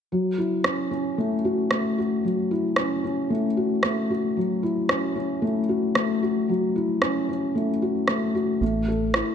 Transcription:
0.12 felt piano F#3
0.38 felt piano E4
0.64 felt piano C#4, cross-stick
0.91 felt piano C#4
1.18 felt piano A3
1.45 felt piano F#4
1.71 felt piano A3, cross-stick
1.98 felt piano F#4
2.24 felt piano F#3
2.51 felt piano E4
2.76 felt piano C#4, cross-stick
3.04 felt piano C#4
3.30 felt piano A3
3.57 felt piano F#4
3.83 felt piano A3, cross-stick
4.10 felt piano F#4
4.37 felt piano F#3
4.63 felt piano E4
4.89 felt piano C#4, cross-stick
5.15 felt piano C#4
5.42 felt piano A3
5.69 felt piano F#4
5.95 felt piano A3, cross-stick
6.23 felt piano F#4
6.49 felt piano F#3
6.76 felt piano E4
7.02 felt piano C#4, cross-stick
7.29 felt piano C#4
7.55 felt piano A3
7.82 felt piano F#4
8.08 felt piano A3, cross-stick
8.35 felt piano F#4
8.61 detuned saw bass A1, felt piano A3
8.88 felt piano A4
9.14 felt piano E4, cross-stick

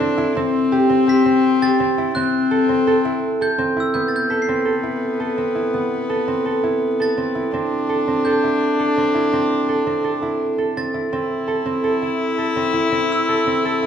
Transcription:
Already playing: viola D4, harp E4 A4
0.00 harp C4
0.18 harp E4
0.35 viola C4, harp C4
0.72 harp G4
0.90 harp C4
1.07 harp G4, glockenspiel B6
1.25 harp C4
1.62 harp G4, glockenspiel A6
1.80 harp C4
1.98 harp E4
2.14 viola C4, harp C4, glockenspiel F#6
2.51 harp A4
2.69 harp C4
2.87 harp A4
3.05 harp E4
3.41 harp A4, glockenspiel G6
3.58 harp C4
3.77 harp E4, glockenspiel E6
3.94 harp B3, viola B3, glockenspiel G6
4.08 glockenspiel A6
4.16 glockenspiel G6
4.30 harp A4, glockenspiel B6
4.42 glockenspiel C7
4.48 harp C4
4.65 harp A4
4.83 harp E4
5.20 harp A4
5.38 harp C4
5.55 harp E4
5.74 harp B3
6.09 harp A4
6.28 harp C4
6.46 harp A4
6.64 harp E4
7.00 harp A4, glockenspiel A6
7.17 harp C4
7.35 harp E4
7.52 harp C4, viola D4
7.89 harp A4
8.08 harp C4
8.25 harp A4, glockenspiel G6
8.44 harp E4
8.79 harp A4
8.97 harp C4
9.15 harp E4
9.33 harp C4
9.69 harp A4
9.86 harp C4
10.04 harp A4
10.22 harp E4
10.58 harp A4
10.77 harp C4, glockenspiel A6
10.94 harp E4
11.12 harp C4, viola E4
11.48 harp A4
11.66 harp C4
11.84 harp A4
12.02 harp E4
12.38 harp A4
12.56 harp C4
12.73 harp E4
12.92 harp C4
13.12 glockenspiel E6
13.29 harp A4
13.47 harp C4
13.65 harp A4
13.83 harp E4

